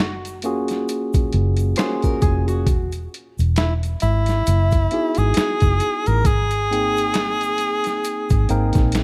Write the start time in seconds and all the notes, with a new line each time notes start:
Already playing: F#1 F#4
0.00 snare
0.25 closed hi-hat, shaker
0.42 A#3 C#4 F4 F#4 G#4, closed hi-hat, shaker
0.68 snare, closed hi-hat, shaker
0.89 closed hi-hat, shaker
1.13 kick, closed hi-hat, shaker
1.33 F#1, closed hi-hat
1.57 closed hi-hat, shaker
1.76 A#3 C#4 F4 F#4 G#4 C5, finger snap, snare, closed hi-hat, shaker
2.02 A#4, kick, closed hi-hat, shaker
2.22 F1 G#4, kick, closed hi-hat, shaker
2.48 F#4, closed hi-hat, shaker
2.67 E1, kick, closed hi-hat, shaker
2.92 closed hi-hat, shaker
3.14 closed hi-hat
3.38 E1, closed hi-hat, shaker
3.56 E4, finger snap, snare, closed hi-hat, shaker
3.83 closed hi-hat, shaker
4.00 G#1 E4, closed hi-hat, shaker
4.26 snare, closed hi-hat, shaker
4.47 F#1, closed hi-hat, shaker
4.71 kick, closed hi-hat, shaker
4.91 B3 D#4 E4 F#4 G#4, closed hi-hat
5.15 G#1 G#4, closed hi-hat, shaker
5.34 finger snap, muted fingered electric bass stroke, snare, closed hi-hat, shaker
5.60 F#1, kick, closed hi-hat, shaker
5.80 closed hi-hat, shaker
6.06 A1 A#4, closed hi-hat, shaker
6.25 G#1 G#4, kick, closed hi-hat, shaker
6.50 closed hi-hat, shaker
6.71 A#3 C4 D#4 G#4 G5, closed hi-hat
6.97 closed hi-hat, shaker
7.14 finger snap, snare, closed hi-hat, shaker
7.41 closed hi-hat, shaker
7.58 closed hi-hat, shaker
7.84 snare, closed hi-hat, shaker
8.04 closed hi-hat, shaker
8.30 G#1, kick, closed hi-hat, shaker
8.49 G#1 A#3 C4 D#4 A#4 G5, closed hi-hat, shaker
8.73 A#1, kick, closed hi-hat, shaker
8.77 snare
8.92 finger snap, snare, closed hi-hat, shaker